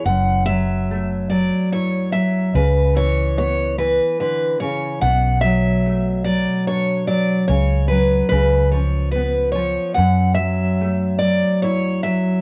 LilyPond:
<<
  \new Staff \with { instrumentName = "Steel-string acoustic guitar" } { \time 3/4 \key fis \minor \tempo 4 = 73 fis''8 e''4 d''8 cis''8 e''8 | b'8 cis''8 cis''8 b'8 b'8 cis''8 | fis''8 e''4 d''8 cis''8 d''8 | cis''8 b'8 b'8 cis''8 b'8 cis''8 |
fis''8 e''4 d''8 cis''8 e''8 | }
  \new Staff \with { instrumentName = "Nylon-string guitar" } { \clef bass \time 3/4 \key fis \minor << { r4 a4 e'4 | r4 b2 | r4 a4 d'4 | r2 b4 |
r4 a4 e'4 | } \\ { <fis, e>8 fis4 fis4 fis8 | cis8 e4 e8 d8 cis8 | b,8 fis4 fis4 fis8 | cis8 fis8 cis8 eis4 eis8 |
fis,8 fis4 fis4 fis8 | } >> }
  \new Staff \with { instrumentName = "Fingered electric bass" } { \clef bass \time 3/4 \key fis \minor fis,,2 r4 | cis,2 r4 | b,,2 r4 | cis,4 cis,2 |
fis,2 r4 | }
>>